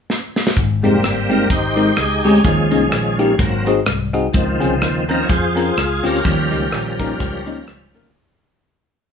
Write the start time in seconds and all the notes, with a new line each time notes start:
0.10 snare
0.36 snare
0.47 snare
0.56 G#1 G#2, kick, closed hi-hat
0.83 F1 G3 G#3 A#3 C4 D#4 G4, closed hi-hat
1.04 G1, cross-stick, closed hi-hat
1.30 G#3 C4 D#4 G4 A#4, closed hi-hat
1.50 G#1 D#4 G4 C5, kick, closed hi-hat
1.76 G#3 C4 D#4 A#4, closed hi-hat
1.96 C#2 G#4, cross-stick, closed hi-hat
2.24 D2 G#3 C4 C#4 D#4 G4 G#4, closed hi-hat
2.34 cross-stick
2.44 D#2 D#3 F3 G#3 C#4, kick, closed hi-hat
2.71 C2 A#3 C#4 D#4 G#4, closed hi-hat
2.92 A#1, cross-stick, closed hi-hat
3.19 A#3 C#4 D#4 G4, closed hi-hat
3.38 G#1 G#2 F#3 A#3 C4, kick, closed hi-hat
3.66 C4 D#4 F#4 G#4, closed hi-hat
3.86 C2, cross-stick, closed hi-hat
4.13 C4 D#4 F#4 G#4, closed hi-hat
4.32 C#2 C#3 D#3 F3 C4, kick, closed hi-hat
4.60 C2 C4 C#4 F4 G#4, closed hi-hat
4.82 D#2, cross-stick, closed hi-hat
5.08 D#3 F3 C4 C#4 F4 A#4, closed hi-hat
5.22 C#5
5.29 F2 F4 G#4 C5, kick, closed hi-hat
5.56 C4 C#4 F4 A#4, closed hi-hat
5.77 C#2 G#4, cross-stick, closed hi-hat
6.03 D2 C4 C#4 F4 G4 A#4, closed hi-hat
6.15 cross-stick
6.25 D#2 D#3 F3 G3 C#4, kick, closed hi-hat
6.51 C#2 A#3 C#4 D#4 G4, closed hi-hat
6.72 A#1, cross-stick, closed hi-hat
6.99 A#3 C#4 D#4 A#4, kick, closed hi-hat
7.20 C#2, kick, closed hi-hat
7.46 A#3 C#4 D#4 A#4, closed hi-hat
7.67 C#2, cross-stick, closed hi-hat
7.94 D2 A#3 C#4 D#4 A#4, closed hi-hat